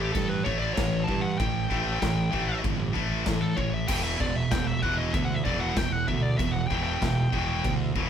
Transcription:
0.00 0.11 A1 medium
0.00 0.12 A2 medium
0.00 0.13 E3 medium
0.00 0.13 A3 medium
0.00 0.13 G4 medium
0.13 0.42 G2 medium
0.13 0.42 A2 medium
0.13 0.42 E3 loud
0.13 0.29 A4 medium
0.13 kick loud
0.13 china medium
0.29 0.44 B4 medium
0.44 0.73 A1 medium
0.44 0.74 A2 loud
0.44 0.75 E3 loud
0.44 0.75 A3 loud
0.44 0.58 C#5 loud
0.44 kick medium
0.59 0.74 D5 loud
0.74 1.04 A1 medium
0.74 1.04 A2 medium
0.74 1.05 E3 medium
0.74 1.05 C#5 medium
0.74 kick loud
0.74 snare loud
0.74 china medium
1.04 1.36 A2 medium
1.04 1.21 A5 loud
1.08 1.36 G2 medium
1.08 1.36 E3 medium
1.08 kick medium
1.21 1.37 F#5 medium
1.38 1.67 A1 loud
1.38 1.68 A2 medium
1.38 1.68 E3 medium
1.38 2.60 G5 medium
1.38 kick loud
1.38 china medium
1.70 1.98 A1 medium
1.70 1.99 A2 medium
1.70 2.00 E3 medium
1.70 2.00 A3 medium
1.70 kick medium
2.00 2.29 A1 loud
2.00 2.29 A2 medium
2.00 2.30 E3 loud
2.00 kick loud
2.00 snare loud
2.00 china medium
2.32 2.60 A1 medium
2.32 2.61 A2 medium
2.32 2.62 E3 medium
2.32 2.62 A3 loud
2.32 kick medium
2.63 2.92 G1 medium
2.63 2.91 A2 medium
2.63 2.92 E3 medium
2.63 kick loud
2.63 china medium
2.93 3.23 A1 loud
2.93 3.24 A2 loud
2.93 3.24 E3 medium
2.93 3.24 A3 loud
2.93 kick medium
3.25 3.54 A2 medium
3.25 3.54 E3 medium
3.25 kick loud
3.25 snare loud
3.25 china medium
3.41 3.57 A4 medium
3.57 3.85 A1 medium
3.57 3.85 A2 medium
3.57 3.86 E3 loud
3.57 3.72 C#5 loud
3.57 kick loud
3.74 3.88 E5 medium
3.88 4.16 E1 loud
3.88 4.18 E2 medium
3.88 4.18 B2 loud
3.88 4.18 E3 loud
3.88 4.03 G5 loud
3.88 kick loud
3.88 china medium
3.88 crash loud
4.03 4.19 E5 loud
4.20 4.47 E1 loud
4.20 4.48 E2 medium
4.20 4.48 B2 medium
4.20 4.35 D5 medium
4.20 kick loud
4.36 4.51 E5 medium
4.51 4.79 E1 loud
4.51 4.79 E2 medium
4.51 4.79 B2 loud
4.51 4.67 G5 loud
4.51 kick loud
4.51 snare loud
4.51 china medium
4.67 4.82 E5 medium
4.82 5.10 E1 medium
4.82 5.12 E2 medium
4.82 5.12 B2 medium
4.82 5.13 E3 loud
4.82 4.97 F#5 loud
4.82 kick medium
4.98 5.13 D#5 loud
5.13 5.41 D2 medium
5.13 5.42 E2 medium
5.13 5.42 B2 medium
5.13 5.24 E5 loud
5.13 kick loud
5.13 china medium
5.25 5.35 F#5 loud
5.34 5.44 E5 medium
5.44 5.73 E1 loud
5.44 5.74 E2 medium
5.44 5.75 B2 loud
5.44 5.75 E3 loud
5.44 5.60 D5 loud
5.44 kick medium
5.60 5.77 F#5 loud
5.77 6.04 E1 medium
5.77 6.04 E2 medium
5.77 6.05 B2 loud
5.77 5.92 G5 medium
5.77 kick loud
5.77 snare loud
5.77 china medium
5.92 6.07 F#5 medium
6.07 6.35 D2 medium
6.07 6.36 E2 medium
6.07 6.36 B2 loud
6.07 6.22 E5 loud
6.07 kick medium
6.22 6.37 D5 medium
6.38 6.67 E1 loud
6.38 6.67 E2 medium
6.38 6.67 B2 medium
6.38 6.53 E5 medium
6.38 kick loud
6.38 china medium
6.52 6.67 F#5 loud
6.67 6.98 E1 medium
6.67 6.99 E2 loud
6.67 7.00 B2 loud
6.67 6.82 G5 medium
6.67 kick medium
6.71 7.00 E3 loud
6.83 7.74 G5 medium
7.01 7.29 E1 loud
7.01 7.29 E2 medium
7.01 7.29 B2 loud
7.01 kick loud
7.01 snare loud
7.01 china medium
7.32 7.60 E1 medium
7.32 7.62 E2 medium
7.32 7.62 B2 medium
7.32 7.62 E3 loud
7.32 kick medium
7.64 7.92 D2 medium
7.64 7.92 E2 medium
7.64 7.92 B2 loud
7.64 kick loud
7.64 china medium
7.96 8.10 E1 medium
7.96 8.10 E2 medium
7.96 8.10 B2 loud
7.96 8.10 E3 loud
7.96 kick loud

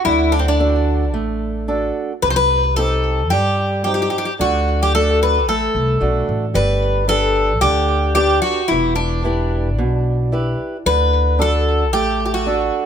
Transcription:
0.05 1.14 D2 medium
0.05 0.58 D3 medium
0.05 0.33 E4 medium
0.32 0.39 D4 medium
0.39 0.47 C4 medium
0.48 1.92 D4 medium
0.60 1.03 D4 soft
0.60 1.03 F#4 soft
0.60 1.03 A4 medium
1.14 1.90 A1 medium
1.14 1.66 A3 medium
1.68 2.11 D4 soft
1.68 2.11 F#4 soft
1.68 2.12 A4 soft
2.22 3.32 C2 medium
2.22 2.75 C3 medium
2.22 2.30 B4 medium
2.30 2.36 C5 medium
2.36 2.76 B4 loud
2.76 3.20 C4 medium
2.76 3.21 D#4 soft
2.76 3.21 G4 medium
2.76 3.27 A4 medium
3.30 4.07 G2 medium
3.30 3.84 G3 medium
3.30 3.83 G4 medium
3.84 4.29 C4 soft
3.84 4.29 D#4 soft
3.84 3.93 G4 medium
3.84 4.29 G4 soft
3.94 4.01 G4 medium
4.02 4.09 G4 medium
4.10 4.17 G4 medium
4.18 4.24 G4 medium
4.25 4.33 G4 medium
4.39 5.48 D2 medium
4.39 4.92 D3 medium
4.39 4.82 F#4 medium
4.83 4.94 G4 medium
4.95 5.37 A3 medium
4.95 5.38 D4 soft
4.95 5.38 F#4 soft
4.95 5.19 A4 medium
5.23 5.48 B4 medium
5.48 5.67 A1 medium
5.48 6.00 A3 medium
5.48 6.25 A4 medium
5.75 5.99 C2 medium
6.01 6.26 B1 medium
6.01 6.44 A3 soft
6.01 6.44 D4 soft
6.01 6.44 F#4 soft
6.29 6.53 A1 medium
6.54 7.63 G1 medium
6.54 7.07 G3 medium
6.54 7.05 B4 medium
7.08 7.51 D4 soft
7.08 7.52 G4 soft
7.08 7.59 A4 medium
7.08 7.52 B4 soft
7.61 8.38 D2 medium
7.61 8.15 D3 medium
7.61 8.12 G4 medium
8.15 8.60 D4 soft
8.15 8.41 G4 medium
8.15 8.60 G4 soft
8.15 8.60 B4 soft
8.42 8.68 F#4 medium
8.68 9.79 E1 medium
8.68 9.24 E3 medium
8.68 8.94 E4 medium
8.96 10.54 D4 medium
9.24 9.68 E4 soft
9.24 9.68 G4 soft
9.24 9.68 B4 soft
9.79 10.54 B1 medium
9.79 10.31 B2 medium
10.32 10.76 E4 soft
10.32 10.76 G4 soft
10.32 10.76 B4 soft
10.86 11.94 D2 medium
10.86 11.38 D3 medium
10.86 11.41 B4 medium
11.39 11.83 D4 soft
11.39 11.83 F#4 soft
11.39 11.83 A4 medium
11.39 11.93 A4 medium
11.93 12.69 A1 loud
11.93 12.46 A3 medium
11.93 12.24 G4 medium
12.26 12.34 G4 medium
12.34 12.84 F#4 medium
12.46 12.86 D4 soft
12.46 12.86 F#4 soft
12.46 12.86 A4 soft

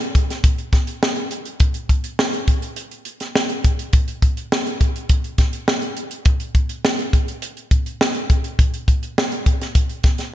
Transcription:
0.01 closed hi-hat soft
0.15 kick medium
0.15 closed hi-hat medium
0.30 snare soft
0.30 closed hi-hat soft
0.44 kick medium
0.44 closed hi-hat medium
0.58 closed hi-hat soft
0.73 kick medium
0.73 snare soft
0.73 closed hi-hat medium
0.87 closed hi-hat soft
1.03 snare loud
1.16 closed hi-hat soft
1.31 closed hi-hat medium
1.45 closed hi-hat medium
1.60 kick medium
1.60 closed hi-hat medium
1.74 closed hi-hat soft
1.89 kick medium
1.89 closed hi-hat medium
2.04 closed hi-hat medium
2.19 snare loud
2.33 closed hi-hat soft
2.48 kick medium
2.48 closed hi-hat medium
2.62 closed hi-hat soft
2.76 closed hi-hat medium
2.91 closed hi-hat soft
3.05 closed hi-hat medium
3.20 snare soft
3.20 closed hi-hat soft
3.35 snare loud
3.49 closed hi-hat soft
3.64 kick medium
3.64 closed hi-hat medium
3.79 closed hi-hat medium
3.93 kick medium
3.93 closed hi-hat medium
4.08 closed hi-hat soft
4.22 kick medium
4.22 closed hi-hat medium
4.37 closed hi-hat soft
4.52 snare loud
4.66 closed hi-hat soft
4.81 kick medium
4.81 closed hi-hat medium
4.96 closed hi-hat soft
5.09 kick medium
5.09 closed hi-hat medium
5.24 closed hi-hat soft
5.38 kick medium
5.38 snare soft
5.38 closed hi-hat medium
5.53 closed hi-hat soft
5.68 snare loud
5.82 closed hi-hat soft
5.97 closed hi-hat medium
6.11 closed hi-hat medium
6.25 kick medium
6.25 closed hi-hat medium
6.40 closed hi-hat soft
6.55 kick medium
6.55 closed hi-hat medium
6.69 closed hi-hat medium
6.85 snare loud
6.99 closed hi-hat soft
7.13 kick medium
7.13 closed hi-hat medium
7.28 closed hi-hat soft
7.42 closed hi-hat medium
7.57 closed hi-hat soft
7.71 kick medium
7.71 closed hi-hat medium
7.86 closed hi-hat soft
8.01 snare loud
8.15 closed hi-hat soft
8.30 kick medium
8.30 closed hi-hat medium
8.44 closed hi-hat soft
8.59 kick medium
8.59 closed hi-hat medium
8.74 closed hi-hat soft
8.88 kick medium
8.88 closed hi-hat medium
9.03 closed hi-hat medium
9.18 snare loud
9.32 closed hi-hat soft
9.46 kick medium
9.46 closed hi-hat medium
9.61 snare soft
9.61 closed hi-hat soft
9.75 kick medium
9.75 closed hi-hat medium
9.89 closed hi-hat soft
10.04 kick medium
10.04 snare soft
10.04 closed hi-hat medium
10.18 snare soft
10.18 closed hi-hat soft

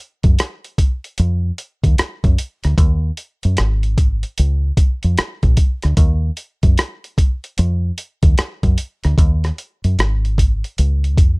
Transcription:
0.23 0.36 F#2 medium
0.23 kick medium
0.23 closed hi-hat soft
0.39 cross-stick medium
0.39 closed hi-hat medium
0.64 closed hi-hat soft
0.78 kick medium
0.78 closed hi-hat medium
1.04 closed hi-hat soft
1.18 1.51 F2 medium
1.18 closed hi-hat medium
1.58 closed hi-hat medium
1.84 1.95 D#2 medium
1.84 kick medium
1.84 closed hi-hat soft
1.98 muted fingered electric bass stroke soft
1.98 cross-stick medium
1.98 closed hi-hat medium
2.24 2.36 F#2 medium
2.24 kick medium
2.24 closed hi-hat soft
2.38 closed hi-hat medium
2.64 2.76 D2 medium
2.64 cross-stick soft
2.64 closed hi-hat soft
2.78 3.10 D#2 loud
2.78 kick medium
2.78 closed hi-hat medium
3.17 closed hi-hat soft
3.43 3.56 F#2 medium
3.43 closed hi-hat soft
3.57 4.22 G#1 medium
3.57 cross-stick medium
3.57 closed hi-hat medium
3.83 closed hi-hat soft
3.98 kick medium
3.98 closed hi-hat medium
4.23 closed hi-hat soft
4.38 4.70 C#2 medium
4.38 closed hi-hat medium
4.77 kick medium
4.77 closed hi-hat medium
5.03 5.15 F2 medium
5.03 closed hi-hat soft
5.18 muted fingered electric bass stroke soft
5.18 cross-stick loud
5.18 closed hi-hat medium
5.43 5.55 A#1 medium
5.43 kick medium
5.43 closed hi-hat soft
5.57 kick medium
5.57 closed hi-hat medium
5.82 5.96 D2 medium
5.82 cross-stick soft
5.82 closed hi-hat soft
5.97 6.30 D#2 loud
5.97 kick loud
5.97 closed hi-hat medium
6.37 closed hi-hat soft
6.63 6.75 F#2 medium
6.63 kick medium
6.63 closed hi-hat soft
6.78 cross-stick medium
6.78 closed hi-hat medium
7.04 closed hi-hat soft
7.18 kick medium
7.18 closed hi-hat medium
7.44 closed hi-hat soft
7.58 7.90 F2 medium
7.58 closed hi-hat medium
7.98 closed hi-hat medium
8.23 8.35 D#2 medium
8.23 kick medium
8.23 closed hi-hat soft
8.38 muted fingered electric bass stroke soft
8.38 cross-stick loud
8.38 closed hi-hat medium
8.63 8.75 F#2 medium
8.63 kick medium
8.63 closed hi-hat soft
8.78 closed hi-hat medium
9.04 9.16 D2 medium
9.04 cross-stick soft
9.04 closed hi-hat soft
9.18 9.50 D#2 loud
9.18 kick medium
9.18 closed hi-hat medium
9.44 cross-stick soft
9.44 closed hi-hat soft
9.58 closed hi-hat soft
9.84 9.95 F#2 medium
9.84 closed hi-hat soft
9.99 10.62 G#1 medium
9.99 cross-stick medium
9.99 closed hi-hat medium
10.25 closed hi-hat soft
10.38 kick medium
10.38 closed hi-hat medium
10.64 closed hi-hat soft
10.78 11.18 C#2 medium
10.78 closed hi-hat medium
11.04 closed hi-hat soft
11.18 11.39 F2 medium
11.18 kick medium
11.18 closed hi-hat medium

